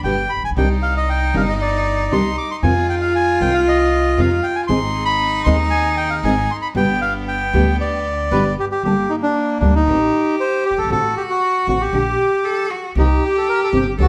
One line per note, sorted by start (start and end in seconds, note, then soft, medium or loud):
0.00 0.25 G1 medium
0.00 0.30 D4 medium
0.04 0.13 B2 medium
0.04 0.13 D3 medium
0.04 0.13 G3 medium
0.04 0.26 B3 medium
0.04 0.13 B3 medium
0.04 0.26 D4 medium
0.04 0.26 G4 medium
0.04 0.14 G4 medium
0.04 0.31 G5 medium
0.29 0.43 B5 medium
0.37 0.43 A1 soft
0.43 0.50 A#1 medium
0.43 0.50 G#5 medium
0.50 0.56 B1 medium
0.56 1.30 C2 medium
0.56 0.65 C3 medium
0.56 0.66 D#3 medium
0.56 0.66 G3 medium
0.56 0.66 D4 medium
0.56 2.64 D#4 loud
0.56 1.30 D#4 medium
0.56 0.66 G4 medium
0.56 1.31 C5 medium
0.56 1.30 D5 medium
0.56 0.69 G5 medium
0.82 0.94 F5 medium
0.97 1.09 D#5 medium
1.09 1.36 G5 medium
1.34 2.08 G1 medium
1.34 1.43 C3 medium
1.34 1.43 D#3 medium
1.34 1.44 G3 medium
1.34 1.43 D4 loud
1.34 2.08 D#4 medium
1.34 1.44 G4 medium
1.34 2.08 C5 medium
1.34 2.08 D5 medium
1.34 1.42 F5 medium
1.49 1.54 D#5 medium
1.61 2.14 D5 medium
2.11 2.33 C2 medium
2.11 2.21 C3 medium
2.11 2.21 D#3 medium
2.11 2.21 G3 medium
2.11 2.33 D4 medium
2.11 2.21 D4 medium
2.11 2.33 D#4 medium
2.11 2.21 G4 medium
2.11 2.33 C5 medium
2.11 2.36 C6 medium
2.38 2.50 D6 medium
2.51 2.57 C6 medium
2.63 3.37 F2 medium
2.63 2.72 C3 medium
2.63 2.73 D#3 medium
2.63 2.72 G#3 medium
2.63 2.73 C4 medium
2.63 3.37 D#4 medium
2.63 4.63 F4 loud
2.63 3.37 F4 medium
2.63 2.73 F4 medium
2.63 3.37 G#4 medium
2.63 2.87 G#5 medium
2.89 2.95 G5 medium
3.01 3.14 F5 medium
3.15 3.39 G#5 medium
3.40 4.14 C2 medium
3.40 3.50 C3 medium
3.40 3.50 D#3 medium
3.40 3.50 G#3 medium
3.40 3.50 C4 medium
3.40 4.14 D#4 medium
3.40 4.14 F4 medium
3.40 3.50 F4 medium
3.40 4.14 G#4 medium
3.40 3.53 G5 medium
3.54 3.60 F5 medium
3.68 4.20 D#5 medium
4.17 4.40 F2 medium
4.17 4.27 C3 medium
4.17 4.27 D#3 medium
4.17 4.27 G#3 medium
4.17 4.27 C4 medium
4.17 4.39 D#4 medium
4.17 4.39 F4 medium
4.17 4.27 F4 medium
4.17 4.40 G#4 medium
4.17 4.46 F5 medium
4.43 4.56 G5 medium
4.55 4.61 G#5 medium
4.63 4.71 F4 medium
4.67 5.43 G#1 medium
4.67 4.78 D#3 medium
4.67 4.79 G#3 medium
4.67 5.43 C4 medium
4.67 4.79 C4 medium
4.67 5.43 D#4 medium
4.67 4.79 D#4 medium
4.67 6.78 D#4 loud
4.67 5.43 G#4 medium
4.67 4.79 G#4 loud
4.67 5.04 C6 medium
5.05 5.43 B5 medium
5.44 6.20 D#2 medium
5.44 5.55 D#3 medium
5.44 5.56 G#3 medium
5.44 6.20 C4 medium
5.44 5.56 C4 loud
5.44 5.56 D#4 loud
5.44 6.20 D#4 medium
5.44 6.21 G#4 medium
5.44 5.56 G#4 medium
5.44 5.56 C6 medium
5.70 5.95 G#5 medium
5.97 6.10 G5 medium
6.10 6.16 F5 medium
6.23 6.46 G#1 medium
6.23 6.34 D#3 medium
6.23 6.34 G#3 medium
6.23 6.46 C4 medium
6.23 6.34 C4 medium
6.23 6.46 D#4 medium
6.23 6.34 D#4 medium
6.23 6.46 G#4 medium
6.23 6.34 G#4 loud
6.23 6.51 G#5 medium
6.51 6.57 C6 medium
6.62 6.68 B5 medium
6.75 7.49 G1 medium
6.75 6.85 B2 medium
6.75 6.85 D3 medium
6.75 6.85 G3 loud
6.75 7.50 B3 medium
6.75 6.85 B3 loud
6.75 8.58 B3 medium
6.75 7.50 D4 medium
6.75 7.50 G4 medium
6.75 6.85 G4 medium
6.75 7.01 G5 medium
7.02 7.13 F5 medium
7.28 7.76 G5 medium
7.53 8.28 D2 loud
7.53 7.63 B2 medium
7.53 7.63 D3 medium
7.53 7.63 G3 loud
7.53 8.28 B3 medium
7.53 7.63 B3 loud
7.53 8.28 D4 medium
7.53 8.28 G4 medium
7.53 7.63 G4 loud
7.80 8.55 D5 medium
8.31 8.54 G1 medium
8.31 8.42 B2 medium
8.31 8.42 D3 medium
8.31 8.41 G3 medium
8.31 8.53 B3 medium
8.31 8.42 B3 medium
8.31 8.54 D4 medium
8.31 8.54 G4 medium
8.31 8.42 G4 medium
8.31 8.44 B4 medium
8.60 8.65 G4 medium
8.72 8.83 G4 medium
8.83 9.06 G1 medium
8.83 8.94 D3 medium
8.83 8.94 G3 medium
8.83 9.89 A#3 medium
8.83 8.94 A#3 medium
8.83 8.94 D4 medium
8.83 9.11 G4 medium
8.83 8.94 A4 medium
9.10 9.16 D#4 medium
9.22 9.58 D4 medium
9.60 9.83 D2 medium
9.60 9.71 D3 medium
9.60 9.71 G3 medium
9.60 9.71 A#3 medium
9.60 9.74 D4 medium
9.60 9.71 D4 medium
9.60 9.71 A4 medium
9.75 10.36 D#4 medium
9.87 10.09 A1 medium
9.87 9.97 D#3 medium
9.87 9.97 A3 medium
9.87 9.98 C4 medium
9.87 10.92 G4 medium
10.40 10.64 C5 medium
10.65 10.79 G4 medium
10.71 10.77 F#1 soft
10.78 10.84 G1 medium
10.78 10.90 A4 medium
10.84 10.90 G#1 medium
10.90 11.12 A1 medium
10.90 11.00 D3 medium
10.90 11.00 A3 medium
10.90 11.00 C4 medium
10.90 11.96 F#4 loud
10.90 11.00 F#4 medium
10.90 11.15 A4 medium
11.17 11.23 G4 medium
11.30 11.67 F#4 medium
11.67 11.89 A1 medium
11.67 11.77 D3 medium
11.67 11.77 A3 medium
11.67 11.78 C4 medium
11.67 11.82 F#4 medium
11.67 11.77 F#4 loud
11.81 12.67 G4 medium
11.93 12.15 A#1 medium
11.93 12.03 D3 medium
11.93 12.03 A3 medium
11.93 12.03 D4 medium
11.93 12.03 G4 medium
11.93 12.46 G4 medium
12.44 12.72 A4 loud
12.70 12.96 F#4 medium
12.95 13.18 C2 medium
12.95 13.06 C3 medium
12.95 13.06 D#3 medium
12.95 13.06 A#3 medium
12.95 13.06 C4 medium
12.95 13.24 D#4 medium
12.95 13.96 G4 loud
12.95 13.06 G4 medium
13.25 13.37 G4 medium
13.37 13.48 A4 medium
13.49 13.60 A#4 medium
13.63 13.69 A4 medium
13.72 13.95 G1 medium
13.72 13.82 C3 medium
13.72 13.82 D#3 medium
13.72 13.82 A#3 medium
13.72 13.83 C4 medium
13.72 13.83 G4 medium
13.72 13.87 G4 medium
13.99 14.08 C#2 medium
13.99 14.08 C#3 medium
13.99 14.08 E3 medium
13.99 14.08 A3 medium
13.99 14.08 C#4 medium
13.99 14.08 F#4 medium
13.99 14.08 G4 medium
13.99 14.08 A4 loud